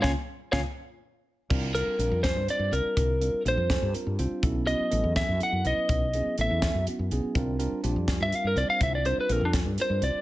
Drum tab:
CC |------|x-----|------|------|
HH |------|-xxxxx|xxxxxx|xxxxxx|
SD |o-o---|---o--|---o--|---o--|
BD |o-o---|o--o--|o--o--|o--o--|

CC |------|------|------|
HH |xxxxxx|xxxxxx|xxxxxx|
SD |---o--|---o--|---o--|
BD |o--o--|o--o--|o--o--|